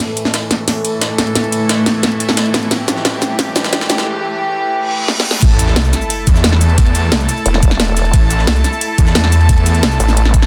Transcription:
0.00 A2 E3 A3 A4, riser
0.17 closed hi-hat, ride
0.25 snare
0.34 snare, closed hi-hat, ride
0.49 E4 E5, snare, closed hi-hat, ride
0.68 snare, closed hi-hat, open hi-hat
0.85 closed hi-hat, ride
0.99 A5, snare, closed hi-hat, ride
1.18 snare, closed hi-hat, ride
1.27 ride
1.35 snare, closed hi-hat, ride
1.44 ride
1.52 closed hi-hat, ride
1.69 snare, closed hi-hat, ride
1.86 snare, closed hi-hat, ride
2.03 snare, closed hi-hat, ride
2.12 ride
2.20 closed hi-hat, ride
2.29 snare
2.37 snare, closed hi-hat, ride
2.46 ride
2.54 snare, closed hi-hat, ride
2.63 ride
2.71 G4, snare, closed hi-hat, ride
2.88 snare, closed hi-hat, ride, cabasa
2.97 snare
3.05 snare, closed hi-hat, ride
3.22 snare, closed hi-hat, ride, cabasa
3.39 snare, closed hi-hat, open hi-hat
3.56 snare, closed hi-hat, ride, cabasa
3.64 snare, ride, cabasa
3.73 snare, closed hi-hat, ride
3.81 snare, ride
3.90 snare, closed hi-hat, ride, cabasa
3.98 snare, ride
4.74 reverse cymbal
5.08 snare
5.20 snare
5.31 snare
5.42 A1 A3 E4 A4 A5, kick, closed hi-hat, crash, ride, sub drop
5.59 A1, closed hi-hat, ride, cabasa
5.68 snare
5.76 C2, snare, closed hi-hat, ride
5.85 cabasa
5.93 snare, closed hi-hat, ride, cabasa
6.02 cabasa
6.10 closed hi-hat, open hi-hat
6.27 E2, kick, closed hi-hat, ride, cabasa
6.36 snare, cabasa
6.44 snare, closed hi-hat, ride
6.52 snare
6.61 closed hi-hat, ride, cabasa
6.69 ride
6.78 kick, closed hi-hat, ride
6.86 ride
6.95 closed hi-hat, ride, cabasa
7.12 C2, snare, closed hi-hat, ride
7.20 cabasa
7.29 closed hi-hat, ride, cabasa
7.37 cabasa
7.46 E1, closed hi-hat, ride
7.54 snare, ride
7.63 kick, closed hi-hat, ride, cabasa
7.71 snare, cabasa
7.80 snare, closed hi-hat, ride
7.88 ride
7.97 snare, closed hi-hat, ride, cabasa
8.05 ride
8.13 A1, kick, closed hi-hat, ride
8.30 A1, closed hi-hat, ride, cabasa
8.39 snare
8.47 C2, snare, closed hi-hat, ride
8.56 cabasa
8.64 snare, closed hi-hat, ride, cabasa
8.73 cabasa
8.81 closed hi-hat, open hi-hat
8.98 E2, kick, closed hi-hat, ride, cabasa
9.07 snare, cabasa
9.15 snare, closed hi-hat, ride
9.24 snare
9.32 closed hi-hat, ride, cabasa
9.41 ride
9.49 kick, closed hi-hat, ride
9.58 ride
9.66 closed hi-hat, ride, cabasa
9.75 closed hi-hat
9.83 C2, snare, closed hi-hat, ride
9.92 cabasa
10.00 A1, closed hi-hat, ride, cabasa
10.08 snare, cabasa
10.17 closed hi-hat, ride
10.25 snare, ride
10.34 kick, closed hi-hat, ride, cabasa
10.42 snare, cabasa

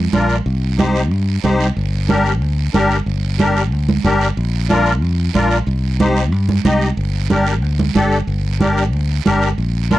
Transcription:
0.13 A#1 D4 F4 A#4, high conga, short guiro
0.29 short guiro
0.46 C2, long guiro
0.78 D#4 G4 C5, high conga, short guiro
0.95 short guiro
1.11 G2, long guiro
1.44 C2 D#4 G4 C5, high conga, short guiro
1.60 short guiro
1.77 G1, long guiro
2.09 D4 G4 A#4, high conga, short guiro
2.26 short guiro
2.41 D2, long guiro
2.74 G1 D4 G4 A#4, high conga, short guiro
2.91 short guiro
3.06 G1, long guiro
3.39 D4 G4 A#4, high conga, short guiro
3.56 short guiro
3.72 D2, long guiro
3.89 high conga
4.04 G1 D4 G4 A#4, high conga, short guiro
4.21 short guiro
4.37 A#1, long guiro
4.69 D4 F4 A#4, high conga, short guiro
4.86 short guiro
5.02 F2, long guiro
5.34 A#1 D4 F4 A#4, high conga, short guiro
5.51 short guiro
5.67 C2, long guiro
5.99 D#4 G4 C5, high conga, short guiro
6.16 short guiro
6.32 G2, long guiro
6.49 high conga
6.65 C2 D#4 G4 D#5, high conga, short guiro
6.81 short guiro
6.97 G1, long guiro
7.30 D4 G4 A#4, high conga, short guiro
7.46 short guiro
7.62 D2, long guiro
7.79 high conga
7.95 G1 D4 G4 A4, high conga, short guiro
8.12 short guiro
8.27 G1, long guiro
8.60 D4 G4 A#4, high conga, short guiro
8.77 short guiro
8.93 D2, long guiro
9.25 G1 D4 G4 A#4, high conga, short guiro
9.42 short guiro
9.58 A#1, long guiro
9.91 D4 F4 A#4, high conga, short guiro

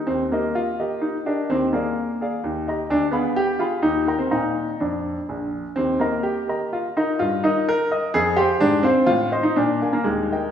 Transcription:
0.07 D#2 C4
0.32 A#3 G4 A#4 D#5
0.55 F4
0.80 G4 A#4 D#5
1.01 D#4
1.26 D4 G4 A#4 D#5
1.50 D#2 C4
1.73 A#3 G#4 D5 F5
2.21 G#4 D5 F5
2.44 D#2
2.68 G4 D#5 A#5
2.90 D2 D4
3.11 B3 G#4 F5 B5
3.36 G4
3.59 F4 G#4 F5 B5
3.83 D#2 D#4
4.07 A#4 G5 A#5
4.19 C4
4.31 A#2 D#4 F5 A#5
4.80 F2 D4
5.29 A#1
5.76 D#2 C4
6.00 A#3 A#4 D#5 A#5
6.23 G4
6.48 A#4 D#5 A#5
6.73 F4
6.97 D#4 A#4 D#5 A#5
7.19 G2 F4
7.44 D#4 A#4 D#5 D#6
7.69 A#4
7.91 A#4 D#5 D#6
8.14 F2 G#4
8.36 G4 C5 F5 C6
8.60 G#2 D4
8.83 C4 C5 F5 C6
9.06 A2 F4
9.32 C5 D#5 C6
9.43 D#4
9.56 A#2 D4
9.82 A#4 F5 G#5
9.93 A#3
10.04 D#2 G#3
10.32 A#4 D#5 G5

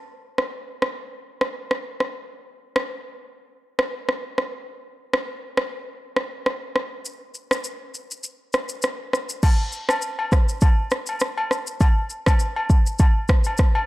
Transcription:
0.38 cross-stick
0.82 cross-stick
1.41 cross-stick
1.71 cross-stick
2.00 cross-stick
2.76 cross-stick
3.79 cross-stick
4.09 cross-stick
4.38 cross-stick
5.13 cross-stick
5.57 cross-stick
6.16 cross-stick
6.46 cross-stick
6.76 cross-stick
7.05 shaker
7.35 shaker
7.51 cross-stick, shaker
7.64 shaker
7.95 shaker
8.11 shaker
8.24 shaker
8.53 cross-stick, shaker
8.69 shaker
8.82 cross-stick, shaker
9.13 cross-stick, shaker
9.29 shaker
9.43 kick, crash, high agogo, shaker
9.72 shaker
9.89 cross-stick, high agogo, shaker
10.02 shaker
10.19 high agogo
10.32 kick, cross-stick, shaker
10.49 shaker
10.61 kick, high agogo, shaker
10.91 cross-stick, shaker
11.07 high agogo, shaker
11.20 cross-stick, shaker
11.38 high agogo
11.51 cross-stick, shaker
11.67 shaker
11.81 kick, high agogo, shaker
12.10 shaker
12.26 kick, cross-stick, high agogo, shaker
12.40 shaker
12.56 high agogo
12.70 kick, shaker
12.87 shaker
12.99 kick, high agogo, shaker
13.28 kick, cross-stick, shaker
13.44 high agogo, shaker
13.58 kick, cross-stick, shaker
13.75 high agogo

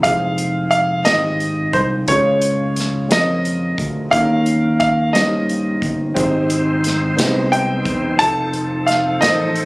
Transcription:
0.02 F1 G#3 C4 D#4 F4 G#4 F5, kick, closed hi-hat
0.38 closed hi-hat
0.71 F5, closed hi-hat
1.04 G#1 G#3 C4 D#4 F4 G4 D#5, snare, closed hi-hat
1.40 closed hi-hat
1.73 C2 C5, kick, closed hi-hat
2.07 C#2 C#3 G#3 C#4 F4 G#4 C#5, kick, closed hi-hat
2.42 closed hi-hat
2.76 snare, closed hi-hat
3.08 F2 G#3 C4 C#4 F4 A#4 D#5, snare, closed hi-hat
3.45 closed hi-hat
3.78 D2, kick, closed hi-hat
4.11 D#2 D#3 A#3 C#4 D#4 G4 A4 F5, kick, closed hi-hat
4.21 A#4
4.46 closed hi-hat
4.80 F5, kick, closed hi-hat
5.13 G2 A#3 C#4 D#4 G4 C5 D#5, snare, closed hi-hat
5.49 closed hi-hat
5.82 G1, kick, closed hi-hat
6.14 G#1 G#2 G#3 C4 D#4 G4 G#4 C5, kick, closed hi-hat
6.50 closed hi-hat
6.84 snare, closed hi-hat
7.17 C2 B3 D#4 G4 G#4 D#5, snare, closed hi-hat
7.23 C4
7.52 G5, closed hi-hat
7.85 E1, kick, closed hi-hat
8.18 F1 F3 C4 D#4 F4 A4 C5 A5, kick, closed hi-hat
8.53 closed hi-hat
8.86 F5, snare, closed hi-hat
9.20 A1 C4 D#4 F4 A4 A#4 D#5, snare, closed hi-hat
9.30 C5
9.56 closed hi-hat

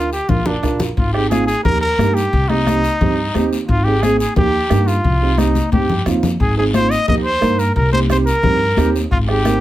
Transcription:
Already playing: D2 F4
0.12 G4, short guiro
0.29 A#1 D4 F4 A#4, bombo low, low conga, long guiro
0.45 D4 F4 A#4, low conga
0.62 A#1 D4 F4 A#4, bombo low, bombo rim, short guiro
0.80 low conga, short guiro
0.97 G#1 F4, bombo low, long guiro
1.13 C4 D#4 G4 G#4, bombo rim
1.29 C4 D#4 F4 G#4, bombo rim, high conga, short guiro
1.46 G#4, short guiro
1.64 D#2 A#3 D#4 G4 A#4, bombo low, low conga, long guiro
1.81 A#4
1.98 G2 A#3 D#4 G4, bombo rim, high conga, short guiro
2.15 G4, short guiro
2.33 C2, bombo low, long guiro
2.49 C4 D#4 G4, bombo rim, high conga
2.67 C4 D#4 G4, bombo rim, high conga, short guiro
2.84 short guiro
3.01 G2 C4 D#4 G4, bombo low, low conga, long guiro
3.34 D#2 C4 D#4 G4, bombo rim, high conga, short guiro
3.53 short guiro
3.67 G#1 F4, bombo low, long guiro
3.84 C4 D#4 G4 G#4
4.02 C4 D#4 G#4, bombo rim, high conga, short guiro
4.19 G#4, short guiro
4.36 D#2 A#3 D#4 G4, bombo low, low conga, long guiro
4.70 G2 A#3 D#4 G4, bombo rim, high conga, short guiro
4.87 F4, short guiro
5.04 C2, bombo low, low conga, long guiro
5.22 C4 D#4 G4
5.38 C4 D#4 G4, bombo rim, high conga, short guiro
5.55 high conga, short guiro
5.72 G2 C4 D#4 G4, bombo low, high conga, long guiro
5.90 low conga
6.06 D#2 C4 D#4 F4, bombo rim, low conga, short guiro
6.23 low conga, short guiro
6.40 G#1 G#4, bombo low, long guiro
6.57 C4 D#4 G#4
6.74 C4 D#4 F4 C5, bombo rim, high conga, short guiro
6.91 D#5, short guiro
7.08 D#2 A#3 D#4 G4 D#5, bombo low, low conga, long guiro
7.25 C5
7.41 G2 A#3 D#4 A#4, bombo rim, high conga, short guiro
7.59 A#4, short guiro
7.75 C2 A#4, bombo low, long guiro
7.93 C4 D#4 G4 C5, high conga
8.09 C4 D#4 G4 C5, bombo rim, high conga, short guiro
8.26 A#4, short guiro
8.43 G2 C4 D#4 G4, bombo low, low conga, long guiro
8.77 D#2 C4 D#4 G4, bombo rim, high conga, short guiro
8.96 short guiro
9.11 G#1 F4, bombo low, long guiro
9.28 C4 D#4 G4 G#4, bombo rim
9.44 C4 D#4 A#4, bombo rim, high conga, short guiro

